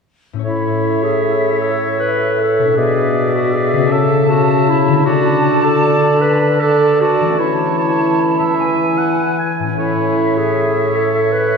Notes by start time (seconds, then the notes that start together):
0.33 A2 C#4 E4
0.39 C#5
0.44 A2 E4 C#5 E5
1.03 G#4
1.61 A4
1.99 B4
2.39 A4
2.59 B2
2.63 D4
2.68 E4
2.72 G#4 B4
2.77 B2 D5 E5
3.35 F#4
3.53 G#4
3.73 C#3
3.77 C#4
3.82 E4
3.86 A4
3.90 C#3 A4 E5 A5
4.30 F#4
4.69 E4
4.88 D3
4.92 A3
4.97 D4
5.01 A4
5.05 D3 F#4 D5 A5
5.64 A4
6.21 B4
6.59 A4 D5 A5
7.00 F#4 D5 A5
7.21 E3
7.25 A3
7.29 C#4
7.34 A4
7.38 E3 E4 C#5 A5
7.78 C#5
8.39 E3 E5
8.45 B3
8.49 E4
8.54 G#4 G#5
8.98 F#5
9.39 G#5
9.59 A2
9.64 C#4
9.69 E4
9.73 C#5
9.77 A2 E4 C#5 E5
10.37 G#4
10.95 A4
11.32 B4